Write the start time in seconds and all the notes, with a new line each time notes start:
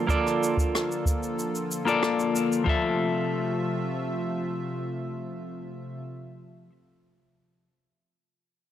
Already playing: D3 F3 A#3 F4 A4
0.07 A#3 F4 A4 D5, kick, cabasa
0.26 cross-stick, cabasa
0.43 cabasa
0.57 kick, cabasa
0.75 cross-stick, cabasa
0.92 cabasa
1.06 kick, cabasa
1.23 cabasa
1.39 cabasa
1.55 cabasa
1.71 cabasa
1.85 A#3 F4 A4 D5, cabasa
2.03 cross-stick, cabasa
2.19 cabasa
2.36 cabasa
2.52 cabasa
2.64 C3 F3 A3 F4 A4 E5, kick
2.69 E5